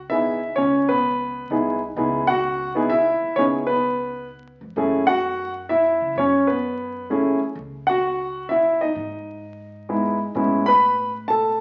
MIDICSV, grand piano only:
0, 0, Header, 1, 2, 480
1, 0, Start_track
1, 0, Key_signature, 4, "minor"
1, 0, Tempo, 466200
1, 585, Time_signature, 3, 2, 24, 8
1, 11950, End_track
2, 0, Start_track
2, 0, Title_t, "Grand piano"
2, 0, Program_c, 0, 0
2, 99, Note_on_c, 0, 76, 88
2, 106, Note_on_c, 0, 59, 50
2, 113, Note_on_c, 0, 63, 41
2, 120, Note_on_c, 0, 64, 45
2, 122, Note_on_c, 0, 68, 53
2, 394, Note_off_c, 0, 59, 0
2, 398, Note_off_c, 0, 63, 0
2, 401, Note_off_c, 0, 64, 0
2, 402, Note_off_c, 0, 68, 0
2, 548, Note_off_c, 0, 76, 0
2, 573, Note_on_c, 0, 73, 81
2, 596, Note_on_c, 0, 61, 63
2, 889, Note_off_c, 0, 61, 0
2, 910, Note_off_c, 0, 73, 0
2, 913, Note_on_c, 0, 71, 91
2, 929, Note_on_c, 0, 59, 56
2, 1507, Note_off_c, 0, 71, 0
2, 1515, Note_off_c, 0, 59, 0
2, 1552, Note_on_c, 0, 63, 48
2, 1553, Note_on_c, 0, 59, 51
2, 1557, Note_on_c, 0, 64, 48
2, 1563, Note_on_c, 0, 68, 58
2, 1838, Note_off_c, 0, 59, 0
2, 1838, Note_off_c, 0, 63, 0
2, 1840, Note_off_c, 0, 64, 0
2, 1843, Note_off_c, 0, 68, 0
2, 2024, Note_on_c, 0, 59, 58
2, 2026, Note_on_c, 0, 63, 50
2, 2034, Note_on_c, 0, 64, 49
2, 2037, Note_on_c, 0, 68, 59
2, 2314, Note_off_c, 0, 59, 0
2, 2315, Note_off_c, 0, 63, 0
2, 2319, Note_off_c, 0, 64, 0
2, 2320, Note_off_c, 0, 68, 0
2, 2341, Note_on_c, 0, 78, 104
2, 2366, Note_on_c, 0, 66, 77
2, 2790, Note_off_c, 0, 78, 0
2, 2803, Note_off_c, 0, 66, 0
2, 2831, Note_on_c, 0, 59, 60
2, 2839, Note_on_c, 0, 63, 57
2, 2842, Note_on_c, 0, 64, 56
2, 2848, Note_on_c, 0, 68, 68
2, 2972, Note_off_c, 0, 59, 0
2, 2976, Note_off_c, 0, 63, 0
2, 2977, Note_off_c, 0, 64, 0
2, 2980, Note_off_c, 0, 68, 0
2, 2980, Note_on_c, 0, 76, 92
2, 3008, Note_on_c, 0, 64, 67
2, 3444, Note_off_c, 0, 64, 0
2, 3459, Note_on_c, 0, 73, 90
2, 3475, Note_on_c, 0, 59, 46
2, 3477, Note_off_c, 0, 76, 0
2, 3480, Note_on_c, 0, 63, 42
2, 3484, Note_on_c, 0, 64, 41
2, 3485, Note_on_c, 0, 68, 54
2, 3488, Note_on_c, 0, 61, 63
2, 3532, Note_off_c, 0, 73, 0
2, 3558, Note_off_c, 0, 61, 0
2, 3759, Note_off_c, 0, 59, 0
2, 3762, Note_off_c, 0, 63, 0
2, 3764, Note_off_c, 0, 64, 0
2, 3764, Note_off_c, 0, 68, 0
2, 3775, Note_on_c, 0, 71, 83
2, 3809, Note_on_c, 0, 59, 56
2, 4379, Note_off_c, 0, 71, 0
2, 4396, Note_off_c, 0, 59, 0
2, 4908, Note_on_c, 0, 57, 56
2, 4914, Note_on_c, 0, 61, 50
2, 4914, Note_on_c, 0, 64, 47
2, 4921, Note_on_c, 0, 68, 66
2, 5196, Note_off_c, 0, 57, 0
2, 5199, Note_off_c, 0, 61, 0
2, 5199, Note_off_c, 0, 64, 0
2, 5202, Note_off_c, 0, 68, 0
2, 5217, Note_on_c, 0, 78, 112
2, 5237, Note_on_c, 0, 66, 71
2, 5668, Note_off_c, 0, 78, 0
2, 5679, Note_off_c, 0, 66, 0
2, 5862, Note_on_c, 0, 76, 78
2, 5872, Note_on_c, 0, 64, 67
2, 6316, Note_off_c, 0, 64, 0
2, 6359, Note_off_c, 0, 76, 0
2, 6359, Note_on_c, 0, 73, 78
2, 6378, Note_on_c, 0, 61, 69
2, 6662, Note_off_c, 0, 61, 0
2, 6665, Note_on_c, 0, 71, 73
2, 6683, Note_off_c, 0, 73, 0
2, 6689, Note_on_c, 0, 59, 56
2, 7264, Note_off_c, 0, 71, 0
2, 7276, Note_off_c, 0, 59, 0
2, 7311, Note_on_c, 0, 57, 53
2, 7316, Note_on_c, 0, 61, 53
2, 7320, Note_on_c, 0, 68, 62
2, 7321, Note_on_c, 0, 64, 49
2, 7597, Note_off_c, 0, 57, 0
2, 7600, Note_off_c, 0, 61, 0
2, 7602, Note_off_c, 0, 64, 0
2, 7602, Note_off_c, 0, 68, 0
2, 8101, Note_on_c, 0, 78, 96
2, 8129, Note_on_c, 0, 66, 82
2, 8715, Note_off_c, 0, 66, 0
2, 8741, Note_on_c, 0, 76, 77
2, 8762, Note_off_c, 0, 78, 0
2, 8763, Note_on_c, 0, 64, 61
2, 9053, Note_off_c, 0, 64, 0
2, 9072, Note_on_c, 0, 75, 70
2, 9074, Note_off_c, 0, 76, 0
2, 9084, Note_on_c, 0, 63, 57
2, 10173, Note_off_c, 0, 63, 0
2, 10181, Note_on_c, 0, 59, 41
2, 10182, Note_on_c, 0, 56, 47
2, 10188, Note_on_c, 0, 63, 44
2, 10191, Note_on_c, 0, 64, 49
2, 10466, Note_off_c, 0, 75, 0
2, 10471, Note_off_c, 0, 56, 0
2, 10471, Note_off_c, 0, 59, 0
2, 10475, Note_off_c, 0, 63, 0
2, 10476, Note_off_c, 0, 64, 0
2, 10661, Note_on_c, 0, 56, 48
2, 10663, Note_on_c, 0, 61, 45
2, 10664, Note_on_c, 0, 59, 47
2, 10673, Note_on_c, 0, 64, 56
2, 10951, Note_off_c, 0, 56, 0
2, 10952, Note_off_c, 0, 59, 0
2, 10952, Note_off_c, 0, 61, 0
2, 10956, Note_off_c, 0, 64, 0
2, 10976, Note_on_c, 0, 83, 117
2, 10997, Note_on_c, 0, 71, 78
2, 11425, Note_off_c, 0, 83, 0
2, 11437, Note_off_c, 0, 71, 0
2, 11613, Note_on_c, 0, 81, 88
2, 11636, Note_on_c, 0, 69, 61
2, 11950, Note_off_c, 0, 69, 0
2, 11950, Note_off_c, 0, 81, 0
2, 11950, End_track
0, 0, End_of_file